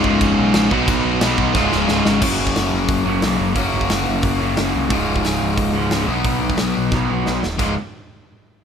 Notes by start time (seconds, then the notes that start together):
Already playing: C#2 G#2 C#3 G#3 F4
0.04 C#1 C#2 G#2 C#3, kick
0.21 F1, kick, crash
0.39 B1
0.54 A#1, snare, crash
0.70 B1 B2 F#3 B3 D#4 F#4, kick
0.74 B3 B4
0.88 B1, kick, crash
1.05 B1
1.20 B1 B2 F#3 B3, snare, crash
1.38 B1, kick
1.54 C#1 C#2 G#2 C#3 G#3 F4, kick, snare
1.72 C#1, snare
1.88 C#1, snare
2.03 G#1 C#2 G#2 C#3, snare
2.20 F#1 F#2 C#3 F#3 A#3, kick, crash
2.25 C#4 F#4
2.39 F#1
2.47 kick
2.56 F#1, snare, open hi-hat
2.73 F#1
2.88 F#1, kick, open hi-hat
3.04 F#1 F#2 C#3 F#3
3.21 B1 F#2 C#3 F#3, snare, open hi-hat
3.40 F#1
3.54 F#1 F#2 C#3 F#3 A#3 C#4, kick, open hi-hat
3.58 F#3 F#4
3.74 F#1
3.81 kick
3.90 F#1, snare, open hi-hat
4.08 F#1
4.23 F#1, kick, open hi-hat
4.39 F#1 F#2 C#3 F#3
4.56 F#1 F#2 C#3 F#3, snare, open hi-hat
4.76 C2
4.89 C#1 C#2 G#2 C#3 G#3 F4, kick, open hi-hat
4.94 C#3
5.08 C#1
5.16 kick
5.25 C#1, snare, open hi-hat
5.41 C#1
5.58 C#1, kick, open hi-hat
5.73 C#1 G#2 C#3
5.78 C#2
5.90 C#1 C#2 G#2 C#3, snare, open hi-hat
6.06 B1 B2 F#3 B3 D#4 F#4 B4
6.11 B3
6.24 B1, kick, open hi-hat
6.42 B1
6.50 kick
6.57 B1, snare, open hi-hat
6.77 B1
6.92 B1 B2 F#3 B3, kick, snare
7.08 B1 B2 F#3 B3
7.26 B1, snare
7.43 D#1, snare
7.58 C#1 C#2 G#2 C#3 G#3 F4, kick, crash